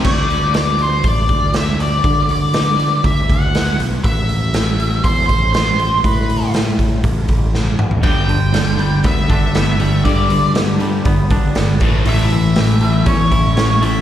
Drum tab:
CC |x---------------|----------------|----------------|----------------|
HH |--o-o-o-o-o-o-o-|o-o-o-o-o-o-o-o-|o-o-o-o-o-o-o-o-|o-o-o-o-o-o-----|
SD |----o-------o---|----o-------o---|----o-------o---|----o-------o---|
T2 |----------------|----------------|----------------|--------------o-|
FT |----------------|----------------|----------------|---------------o|
BD |o-------o-o-----|o-------o-o-----|o-------o-o-----|o-----o-o-o-----|

CC |----------------|----------------|----------------|
HH |o-o-o-o-o-o-o-o-|o-o-o-o-o-o-o-o-|o-o-o-o-o-o-o-o-|
SD |----o-------o---|----o-------o---|----o-------o---|
T2 |----------------|----------------|----------------|
FT |----------------|----------------|----------------|
BD |o-------o-o-----|o-------o-o---o-|--------o-o-----|